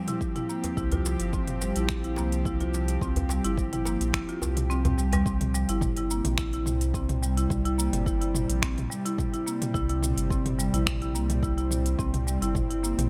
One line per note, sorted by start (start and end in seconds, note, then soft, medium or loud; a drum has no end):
0.00 5.22 F3 medium
0.00 5.22 C4 medium
0.00 5.22 G4 medium
0.08 0.20 E4 medium
0.08 closed hi-hat medium
0.08 mid tom medium
0.08 shaker soft
0.21 kick loud
0.21 shaker soft
0.36 0.43 E4 medium
0.36 closed hi-hat soft
0.36 mid tom medium
0.36 shaker soft
0.49 0.76 A#3 medium
0.49 shaker medium
0.64 closed hi-hat medium
0.64 djembe tone medium
0.64 shaker soft
0.77 1.16 C2 medium
0.77 0.92 E4 medium
0.77 kick loud
0.77 shaker soft
0.92 1.00 F4 medium
0.92 closed hi-hat soft
0.92 djembe bass medium
0.92 shaker soft
1.05 djembe slap medium
1.05 shaker medium
1.20 1.72 G1 medium
1.20 closed hi-hat medium
1.20 shaker soft
1.33 1.60 C4 medium
1.33 kick medium
1.33 shaker soft
1.47 closed hi-hat soft
1.47 mid tom medium
1.47 shaker soft
1.61 1.70 G3 medium
1.61 djembe slap soft
1.61 shaker medium
1.76 2.18 A#1 medium
1.76 1.89 E4 medium
1.76 closed hi-hat medium
1.76 shaker soft
1.89 finger snap medium
1.89 kick medium
1.89 shaker soft
2.04 2.12 E4 medium
2.04 closed hi-hat soft
2.04 shaker soft
2.16 2.98 C2 medium
2.16 2.44 A#3 medium
2.16 djembe slap medium
2.16 djembe tone medium
2.16 shaker medium
2.32 closed hi-hat medium
2.32 shaker soft
2.45 2.60 E4 medium
2.45 kick loud
2.45 shaker soft
2.60 2.68 F4 medium
2.60 closed hi-hat soft
2.60 djembe tone medium
2.60 shaker soft
2.74 djembe slap soft
2.74 shaker medium
2.88 closed hi-hat medium
2.88 shaker soft
3.01 3.41 C2 medium
3.01 3.28 C4 medium
3.01 kick medium
3.01 shaker soft
3.16 closed hi-hat soft
3.16 djembe slap soft
3.16 djembe bass medium
3.16 shaker soft
3.29 3.38 G3 medium
3.29 djembe slap medium
3.29 shaker medium
3.44 3.97 G1 medium
3.44 3.57 E4 medium
3.44 closed hi-hat medium
3.44 shaker soft
3.58 kick loud
3.58 shaker soft
3.73 3.80 E4 medium
3.73 closed hi-hat soft
3.73 mid tom medium
3.73 shaker soft
3.85 4.12 A#3 medium
3.85 djembe slap medium
3.85 shaker medium
4.01 4.13 A#1 medium
4.01 closed hi-hat medium
4.01 shaker soft
4.13 4.26 G1 medium
4.13 4.28 E4 medium
4.13 finger snap medium
4.13 kick medium
4.13 shaker soft
4.29 4.36 F4 medium
4.29 closed hi-hat soft
4.29 shaker soft
4.42 5.22 C2 medium
4.42 djembe tone medium
4.42 shaker medium
4.57 closed hi-hat medium
4.57 mid tom medium
4.57 shaker soft
4.70 4.78 C4 loud
4.70 shaker soft
4.85 4.97 C4 medium
4.85 closed hi-hat soft
4.85 mid tom medium
4.85 djembe bass medium
4.85 shaker soft
4.98 5.12 G3 medium
4.98 shaker medium
5.13 5.25 G3 loud
5.13 closed hi-hat medium
5.13 djembe tone medium
5.13 djembe bass medium
5.13 shaker soft
5.26 5.65 C2 medium
5.26 13.10 C3 medium
5.26 13.10 G3 medium
5.26 13.10 C4 medium
5.26 5.53 C4 medium
5.26 kick loud
5.26 shaker soft
5.41 closed hi-hat soft
5.41 mid tom medium
5.41 shaker soft
5.54 5.63 G3 medium
5.54 shaker medium
5.69 6.21 G1 medium
5.69 5.82 E4 medium
5.69 closed hi-hat medium
5.69 shaker soft
5.81 kick loud
5.81 mid tom medium
5.81 shaker soft
5.97 6.05 E4 medium
5.97 closed hi-hat soft
5.97 shaker soft
6.11 6.37 A#3 medium
6.11 shaker medium
6.25 6.67 A#1 medium
6.25 closed hi-hat medium
6.25 mid tom medium
6.25 shaker soft
6.38 6.52 E4 medium
6.38 finger snap medium
6.38 kick loud
6.38 shaker soft
6.53 6.61 E4 medium
6.53 closed hi-hat soft
6.53 shaker soft
6.66 7.47 C2 loud
6.66 mid tom medium
6.66 shaker medium
6.81 closed hi-hat medium
6.81 shaker soft
6.94 7.21 C4 medium
6.94 kick loud
6.94 shaker soft
7.09 closed hi-hat soft
7.09 mid tom medium
7.09 shaker soft
7.23 7.31 G3 medium
7.23 shaker medium
7.37 7.50 E4 medium
7.37 closed hi-hat medium
7.37 shaker soft
7.50 7.89 C2 medium
7.50 kick loud
7.50 mid tom medium
7.50 shaker soft
7.65 7.73 E4 medium
7.65 closed hi-hat soft
7.65 shaker soft
7.78 8.05 A#3 medium
7.78 shaker medium
7.93 8.45 G1 medium
7.93 closed hi-hat medium
7.93 mid tom medium
7.93 shaker soft
8.06 8.20 E4 medium
8.06 kick loud
8.06 shaker soft
8.21 8.29 E4 medium
8.21 closed hi-hat soft
8.21 shaker soft
8.35 mid tom medium
8.35 shaker medium
8.49 8.87 A#1 medium
8.49 closed hi-hat medium
8.49 shaker soft
8.62 8.89 C4 medium
8.62 finger snap medium
8.62 kick loud
8.62 shaker soft
8.78 closed hi-hat soft
8.78 mid tom medium
8.78 shaker soft
8.90 8.99 G3 medium
8.90 shaker medium
9.05 9.18 E4 medium
9.05 closed hi-hat medium
9.05 shaker soft
9.18 kick loud
9.18 mid tom medium
9.18 shaker soft
9.33 9.41 E4 medium
9.33 closed hi-hat soft
9.33 shaker soft
9.46 9.73 A#3 medium
9.46 shaker medium
9.62 closed hi-hat medium
9.62 mid tom medium
9.62 shaker soft
9.74 10.14 C2 medium
9.74 9.88 E4 medium
9.74 kick loud
9.74 shaker soft
9.89 9.97 E4 medium
9.89 closed hi-hat soft
9.89 shaker soft
10.03 mid tom medium
10.03 shaker medium
10.17 10.70 G1 medium
10.17 closed hi-hat medium
10.17 shaker soft
10.30 10.57 C4 medium
10.30 kick loud
10.30 shaker soft
10.46 closed hi-hat soft
10.46 mid tom medium
10.46 shaker soft
10.59 10.67 G3 medium
10.59 shaker medium
10.73 11.16 A#1 medium
10.73 10.86 E4 medium
10.73 closed hi-hat medium
10.73 shaker soft
10.87 finger snap medium
10.87 kick loud
10.87 mid tom medium
10.87 shaker soft
11.02 11.09 E4 medium
11.02 closed hi-hat soft
11.02 shaker soft
11.14 11.95 C2 loud
11.14 11.42 A#3 medium
11.14 shaker medium
11.30 closed hi-hat medium
11.30 mid tom medium
11.30 shaker soft
11.43 11.56 E4 medium
11.43 kick loud
11.43 shaker soft
11.58 11.65 E4 medium
11.58 closed hi-hat soft
11.58 shaker soft
11.71 mid tom medium
11.71 shaker medium
11.86 closed hi-hat medium
11.86 shaker soft
11.99 12.38 C2 medium
11.99 12.25 C4 medium
11.99 kick loud
11.99 shaker soft
12.14 closed hi-hat soft
12.14 mid tom medium
12.14 shaker soft
12.27 12.36 G3 medium
12.27 shaker medium
12.42 12.94 G1 medium
12.42 12.54 E4 medium
12.42 closed hi-hat soft
12.42 shaker soft
12.55 kick loud
12.55 mid tom medium
12.55 shaker soft
12.70 12.78 E4 medium
12.70 closed hi-hat soft
12.70 shaker soft
12.83 13.10 A#3 medium
12.83 shaker medium
12.98 13.10 A#1 medium
12.98 closed hi-hat medium
12.98 mid tom medium
12.98 shaker soft